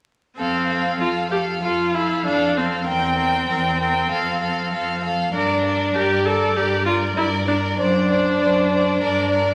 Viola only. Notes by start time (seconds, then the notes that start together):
0.38 C4
1.01 F4
1.32 G4
1.63 F4
1.95 E4
2.26 D4
2.58 C4
2.88 C4
5.34 D4
5.95 G4
6.25 A4
6.57 G4
6.86 F4
7.17 E4
7.48 D4
7.78 D4